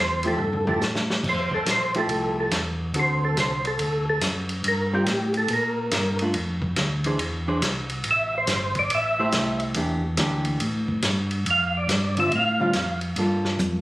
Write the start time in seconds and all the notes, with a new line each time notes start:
Already playing: E2
0.00 C5
0.23 F3 A3 E4 G4, ride
0.28 A4
0.38 G2, floor tom
0.53 floor tom
0.67 F3 A3 E4 G4 A4, floor tom
0.80 A2, snare, hi-hat pedal
0.95 snare
1.10 snare
1.24 F2, kick, crash
1.29 C5
1.51 F2 A4, kick
1.65 A#1, snare, hi-hat pedal, ride
1.71 C5
1.94 F3 A3 E4 G4 A4, ride
2.08 C2, ride
2.40 A4
2.51 E2, snare, hi-hat pedal, ride
2.93 D2 D3 C4 F#4 A4, ride
3.00 C5
3.25 A4
3.36 C2, snare, hi-hat pedal, ride
3.40 C5
3.65 A4, ride
3.79 D2, ride
4.10 A4
4.21 F#2, snare, hi-hat pedal, ride
4.49 ride
4.64 G2, ride
4.68 A#4
4.93 G3 C4 F4 G4 A#4
5.06 A2, snare, hi-hat pedal, ride
5.34 A4, ride
5.48 A#2, ride
5.54 A#4
5.91 G2, snare, hi-hat pedal, ride
6.19 A3 D4 F4, ride
6.34 F2, ride
6.62 kick
6.76 D2, snare, hi-hat pedal, ride
7.04 E3 D4 G#4 C5, ride
7.19 E2, ride
7.48 E3 D4 G#4 C5
7.62 C2, snare, hi-hat pedal, ride
7.89 ride
8.04 A1, ride
8.11 E5
8.38 C5
8.47 G1, snare, hi-hat pedal, ride
8.75 kick, ride
8.79 D5
8.90 A1, ride
8.95 E5
9.19 A3 E4 G4 C5
9.32 C2, snare, hi-hat pedal, ride
9.60 ride
9.74 E2 E3 A#3 D4 G4, ride
10.17 D2 E3 A#3 D4 G4, snare, hi-hat pedal, ride
10.45 ride
10.60 A2, ride
10.88 kick
11.02 G2, snare, hi-hat pedal, ride
11.31 ride
11.46 F2, ride
11.51 F5
11.77 D5
11.88 G2, snare, hi-hat pedal, ride
12.17 D3 G3 C4 F4 E5, ride
12.32 A2, ride
12.36 F5
12.60 D3 G3 C4 F4
12.73 F2, snare, hi-hat pedal, ride
13.01 ride
13.16 G2 G3 A#3 F4 A4, ride
13.45 snare
13.59 F2, hi-hat pedal, high tom